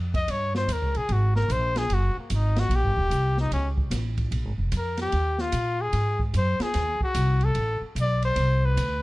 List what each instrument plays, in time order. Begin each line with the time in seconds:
Already playing: upright bass F2
0.14 trumpet D#5, kick, ride
0.28 upright bass G2, trumpet C#5, ride
0.55 trumpet C5, snare
0.67 upright bass D#2, hi-hat pedal, ride
0.73 trumpet A#4
0.82 upright bass C#2
0.95 upright bass A#1, trumpet G#4, ride
1.09 upright bass G#1, trumpet F#4, ride
1.36 trumpet A#4, snare
1.48 upright bass A#1, trumpet C5, hi-hat pedal, ride
1.76 trumpet G#4, snare, ride
1.90 upright bass F#1, ride
1.94 trumpet F#4
2.16 trumpet A#3, muted upright bass stroke
2.30 upright bass G#1, hi-hat pedal, ride
2.34 trumpet D#4
2.56 trumpet F#4, snare, ride
2.69 upright bass A#1, ride
2.75 trumpet G4
2.83 upright bass G1
2.97 upright bass D#1, kick
3.11 upright bass C2, hi-hat pedal, ride
3.37 trumpet D#4, snare
3.51 upright bass C#2, trumpet C#4, ride
3.78 kick
3.90 upright bass A1, snare, hi-hat pedal, ride
4.18 kick, ride
4.31 upright bass A#1, ride
4.45 upright bass G#1
4.58 upright bass F1
4.72 upright bass F2, hi-hat pedal, ride
4.77 trumpet A#4
4.97 trumpet G4, snare, ride
5.12 upright bass D#2, ride
5.38 trumpet F4, snare
5.52 upright bass A#2, hi-hat pedal, ride
5.81 trumpet G#4
5.93 upright bass G#2, ride
6.19 kick
6.34 upright bass F#2, trumpet C5, hi-hat pedal, ride
6.59 trumpet G#4, muted upright bass stroke, snare, ride
6.74 upright bass D#2, snare, ride
7.00 trumpet F#4, muted upright bass stroke, kick
7.14 upright bass C2, hi-hat pedal, ride
7.41 trumpet A4, ride
7.55 upright bass A1, ride
7.81 muted upright bass stroke
7.95 upright bass B1, hi-hat pedal, ride
8.01 trumpet D5
8.22 trumpet C5, ride
8.36 upright bass C2, ride
8.66 trumpet B4
8.77 upright bass D2, hi-hat pedal, ride